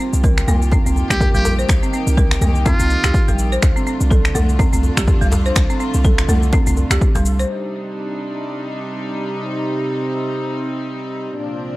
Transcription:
Already playing: D#3 A#3 F4 G4
0.00 C4
0.13 C2, cabasa
0.24 A#4, kick, mid tom, cabasa
0.38 finger snap, cabasa
0.48 C2 A#3, mid tom, djembe tone, cabasa
0.62 cabasa
0.72 C4, kick, djembe tone, cabasa
0.86 C2 C4, cabasa
0.96 djembe tone, cabasa
1.10 C2 G4, finger snap, kick, mid tom, cabasa
1.21 kick, djembe tone, cabasa
1.35 A#1 G3 G4, cabasa
1.45 djembe slap, djembe tone, cabasa
1.59 C5, cabasa
1.69 C2 D#4, finger snap, kick, djembe slap, cabasa
1.83 C4, cabasa
1.93 C4, cabasa
2.07 C2, cabasa
2.17 A#4, kick, mid tom, cabasa
2.31 finger snap, cabasa
2.41 C2 A#3, mid tom, djembe tone, cabasa
2.55 cabasa
2.66 C4 F4, kick, djembe slap, djembe tone, cabasa
2.80 C2 C4, cabasa
2.90 cabasa
3.04 C2 G4, finger snap, djembe slap, cabasa
3.14 kick, cabasa
3.28 A#1 G3, djembe slap, cabasa
3.39 cabasa
3.52 C5, cabasa
3.62 C2 D3 A3 D4 F4, finger snap, kick, djembe slap, cabasa
3.76 C4, cabasa
3.87 C4, cabasa
4.01 C2, cabasa
4.11 A4, kick, mid tom, cabasa
4.25 finger snap, cabasa
4.35 C2 A3, mid tom, djembe tone, cabasa
4.49 cabasa
4.59 C4, kick, djembe tone, cabasa
4.73 C2 C4, cabasa
4.83 djembe tone, cabasa
4.97 C2 G4, finger snap, kick, mid tom, cabasa
5.07 kick, djembe tone, cabasa
5.21 C2 G3, cabasa
5.32 djembe slap, djembe tone, cabasa
5.46 C5, cabasa
5.56 C2, finger snap, kick, djembe slap, cabasa
5.70 C4, cabasa
5.80 C4, cabasa
5.94 C2, cabasa
6.04 A4, kick, mid tom, cabasa
6.18 finger snap, cabasa
6.28 C2 A3, mid tom, djembe tone, cabasa
6.43 cabasa
6.53 C4, kick, djembe slap, djembe tone, cabasa
6.67 C2 C4, cabasa
6.77 djembe tone, cabasa
6.90 C2 G4, finger snap, djembe slap, cabasa
7.01 kick, cabasa
7.15 C2 G3, djembe slap, cabasa
7.25 cabasa
7.40 C5, cabasa
7.50 C3 G3 D4 D#4
9.44 C4
11.37 C2 A#2 F3 C4 D4

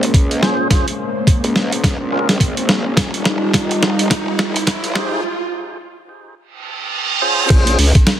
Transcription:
Already playing: A#1 G#3 A#3 C#4 C5, riser
0.03 closed hi-hat
0.14 C#2, kick, closed hi-hat
0.31 closed hi-hat
0.42 C#4 F4 G#4 C5, snare
0.71 C#4 F4 G#4 C5, kick, snare, closed hi-hat
0.88 closed hi-hat
1.27 kick, closed hi-hat
1.44 C#2, closed hi-hat
1.56 snare
1.72 closed hi-hat
1.84 C#2, kick, snare, closed hi-hat
2.00 A#1
2.12 C#4 F4 G#4 A#4
2.29 snare, closed hi-hat
2.40 kick, closed hi-hat
2.57 G#1, closed hi-hat
2.69 snare
2.97 F1 G3 D#4 F4, kick, snare, closed hi-hat
3.14 closed hi-hat
3.25 snare
3.42 F1
3.53 F1, kick, snare, closed hi-hat
3.71 closed hi-hat
3.83 snare
3.99 closed hi-hat
4.10 kick, snare, closed hi-hat
4.38 F1, snare
4.56 closed hi-hat
4.67 G#1, kick, snare, closed hi-hat
4.84 closed hi-hat
4.95 D#4 G4 G#4 C5, snare
6.37 reverse cymbal
7.22 C#4 F4 G#4 C5
7.50 A#1 G#3 C4 C#4 A#4, kick, closed hi-hat, crash
7.67 closed hi-hat
7.79 C#2, open hi-hat
7.95 kick, closed hi-hat
8.07 snare, closed hi-hat

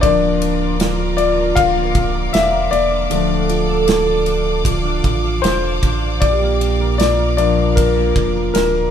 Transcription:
Already playing: F3 C4 D#4 F4 A4
0.01 D1 D3 F3 A#3 D4 A#4 D5 D6, kick, ride
0.22 A#3
0.42 D4, ride
0.61 A#4
0.79 D4 F4, snare, ride
0.99 A#4
1.17 A#3 D5, ride
1.38 D4
1.55 D1 D3 F5, kick, ride
1.75 A#3
1.95 D4, kick, ride
2.14 A#4
2.33 E1 D4 E5, snare, ride
2.52 A#4
2.71 E1 A#3 D5, ride
2.91 D4
3.10 D1 D3 F3 A3 D4 A4 F5, ride
3.30 D4
3.49 F4, ride
3.68 A4
3.87 F4, snare, ride
4.06 A4
4.26 D4, ride
4.45 F4
4.65 D3 F4, kick, ride
4.85 D4
5.04 A1 F4, kick, ride
5.24 A4
5.42 E1 F4 C5, snare, ride
5.63 A4
5.83 A1 D4, kick, ride
6.02 F4
6.20 A#1 A#2 G4 A#4 D5, kick, ride
6.41 A#3
6.61 D4, ride
6.80 A#4
6.98 D4 F4 D5, snare, ride
7.19 A#4
7.37 F3 A#3 D4 D5, ride
7.58 D4
7.75 A#2 A#4, kick, ride
7.97 A#3
8.16 F1 D4, kick, ride
8.35 A#4
8.54 D1 D4 A#4, snare, ride
8.74 A#4

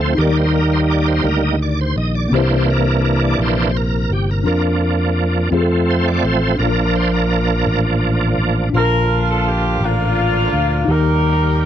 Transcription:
Already playing: D2 F3 A3 C4 F4 A4
0.01 C5
0.15 D#2 D#3 G3 A#3 D#4 G4
0.20 A#4 D5
0.37 C5
0.54 A#4
0.73 C5
0.91 D5
1.08 C5
1.23 D2 G3 A#3 D#4 A#4
1.43 D#5
1.62 D5
1.81 C5
1.96 A#1 D#5
2.15 D5
2.28 C2 C3 A#3 C4 D4
2.33 E3 A#3 D4 G4 C5
2.38 E4
2.70 A#4
3.05 A#4
3.24 D5
3.38 A#1 E3 A#3 D4 C5
3.77 A#4
4.10 G1 G4
4.31 A#4
4.44 F2 F3 A#3 D4 F4 A#4
4.48 D4
5.51 F2 F3 A3 C4 F4 G#4
5.61 A4
5.91 C5
6.08 D5
6.23 A1 C5
6.55 A#1 A#2 F3 A#3 D4 F4
6.59 D4 A#4
6.96 C5
7.13 A#4
7.67 A1
8.38 A1
8.70 A#1 A#2 D4 F4
8.74 C3 F3 A#3 D4 F4 A#4
8.81 D3
9.31 A4
9.49 G4
9.81 A1 A#3 D4
9.85 F4
10.53 D2
10.85 D#2 D#3 D#4 G4
10.89 G3 A#3 D#4 G4 A#4

